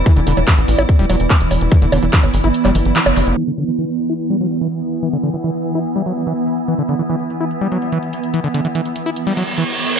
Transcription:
Already playing: E3 B3 E4 D5 B5
0.06 E3, kick, closed hi-hat
0.16 E1 D3, closed hi-hat
0.27 E1 D3, open hi-hat
0.37 E1 E3, closed hi-hat, high bongo
0.47 E3, kick, clap, closed hi-hat
0.58 A1, closed hi-hat
0.68 A1, open hi-hat
0.79 A1 E4, closed hi-hat, high bongo
0.89 kick, closed hi-hat
0.99 E1 G3, closed hi-hat
1.10 E1 F#3, open hi-hat, high bongo
1.20 E1, closed hi-hat
1.30 E3, kick, clap, closed hi-hat
1.41 E1, closed hi-hat
1.51 E1, open hi-hat, high bongo
1.61 E1, closed hi-hat
1.72 E3, kick, closed hi-hat
1.82 E1 D3, closed hi-hat
1.92 E1 D3, open hi-hat, high bongo
2.03 E1 E3, closed hi-hat
2.13 E3, kick, clap, closed hi-hat
2.23 G1, closed hi-hat, high bongo
2.34 G1, open hi-hat
2.44 G1 E4, closed hi-hat
2.54 closed hi-hat
2.65 F#1 G3, clap, closed hi-hat, high bongo
2.75 G1 E3, open hi-hat
2.85 G1, closed hi-hat
2.96 E3, clap, closed hi-hat
3.06 F#1, closed hi-hat, high bongo
3.16 F#1, open hi-hat, zap
3.27 F#1, closed hi-hat
3.37 E3 B3
3.43 E5
3.47 D3
3.58 D3
3.68 E3
3.78 E3, closed hi-hat
3.99 closed hi-hat
4.09 E4, closed hi-hat
4.20 closed hi-hat
4.30 G3, closed hi-hat
4.41 F#3, closed hi-hat
4.51 closed hi-hat
4.61 E3, closed hi-hat
4.72 closed hi-hat
4.82 closed hi-hat
4.92 closed hi-hat
5.03 E3, closed hi-hat
5.13 D3, closed hi-hat
5.23 D3, closed hi-hat
5.34 E3, closed hi-hat
5.44 E3, closed hi-hat
5.54 closed hi-hat
5.65 closed hi-hat
5.75 E4, closed hi-hat
5.85 closed hi-hat
5.96 G3, closed hi-hat
6.06 F#3, closed hi-hat
6.16 closed hi-hat
6.27 E3, closed hi-hat
6.37 closed hi-hat
6.47 closed hi-hat
6.58 closed hi-hat
6.68 E3, closed hi-hat
6.78 D3, closed hi-hat
6.89 D3, closed hi-hat
6.99 E3, closed hi-hat
7.10 E3, closed hi-hat
7.20 closed hi-hat
7.30 closed hi-hat
7.41 E4, closed hi-hat
7.51 closed hi-hat
7.61 G3, closed hi-hat
7.72 F#3, closed hi-hat
7.82 closed hi-hat
7.92 E3, closed hi-hat
8.03 closed hi-hat
8.13 closed hi-hat
8.23 closed hi-hat
8.34 E3, closed hi-hat
8.44 D3, closed hi-hat
8.54 D3, closed hi-hat
8.65 E3, closed hi-hat
8.75 E3, closed hi-hat
8.85 closed hi-hat
8.96 closed hi-hat
9.06 E4, closed hi-hat
9.16 closed hi-hat, reverse cymbal
9.27 G3, closed hi-hat
9.37 F#3, closed hi-hat
9.47 closed hi-hat
9.58 E3, closed hi-hat
9.68 closed hi-hat
9.79 closed hi-hat
9.89 closed hi-hat

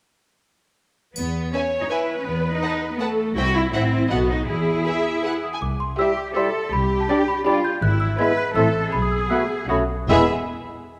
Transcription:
1.15 E2 B3, triangle
1.52 C#4 B4 C#5 E5 G#5
1.81 D#4
1.90 E4 B4 E5 G#5
2.18 C#4
2.27 E2 B3
2.55 D#4
2.63 B4 F#5 A5
2.91 B3
3.00 A3 A4 B4 F#5 A5
3.36 C2 E4 F#4 C5 E5 G5
3.55 E4
3.73 A1 C4 C5 E5 F#5
4.10 B1 B3 F#4 A4 D#5 F#5
4.29 D#4
4.47 E2 E4 G#4
4.86 G#4 B4 E5
5.23 G#4 B4 F#5
5.43 D#6
5.53 G#5
5.62 C2 D6
5.80 C6
5.98 G3 E4 G4 C5 E5 G5 E6
6.17 D6
6.36 G3 E4 G4 A4 C5 E5 G5 C6
6.73 C2 G4 B5
7.01 A5
7.09 G3 D4 G4 D5 G5
7.28 B5
7.46 G3 D4 F4 G4 D5 G5 B5
7.64 G6
7.82 G#1 E4 F#6
8.00 E6
8.18 G#3 B3 E4 B4 E5 B5 G#6
8.37 F#6
8.55 A1 A3 C4 E4 A4 E5 A5 C6 E6
8.92 B1 G#4 B5
9.02 D#6
9.11 E6
9.21 D#6
9.30 A3 B3 F#4 A4 B4 F#5 B5 E6
9.69 B1 A3 C#4 F#4 A4 C#5 F#5 B5 D#6
10.08 E1 E2 G#3 B3 E4 G#4 E5 B5 E6

